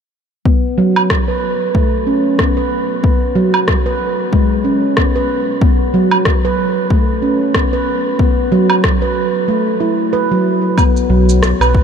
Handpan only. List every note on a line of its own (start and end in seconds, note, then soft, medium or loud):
0.46 0.63 B3 medium
0.78 0.95 F#3 medium
1.28 1.36 B4 medium
1.75 1.92 A3 medium
2.07 2.38 C#4 medium
2.39 2.56 B3 medium
2.57 2.65 B4 medium
3.03 3.21 B3 medium
3.35 3.53 F#3 medium
3.86 3.94 B4 medium
4.32 4.50 G#3 medium
4.65 4.95 C#4 medium
4.97 5.14 B3 medium
5.16 5.23 B4 medium
5.62 5.79 B3 medium
5.94 6.11 F#3 medium
6.45 6.52 B4 loud
6.91 7.08 A3 medium
7.22 7.53 C#4 medium
7.55 7.73 B3 medium
7.73 7.81 B4 medium
8.20 8.37 B3 medium
8.52 8.69 F#3 loud
9.02 9.10 B4 medium
9.48 9.66 A3 medium
9.80 9.97 E4 medium
10.13 10.30 B4 medium
10.31 10.44 F#3 medium
10.78 10.95 B3 medium
11.10 11.27 F#3 medium
11.61 11.69 B4 medium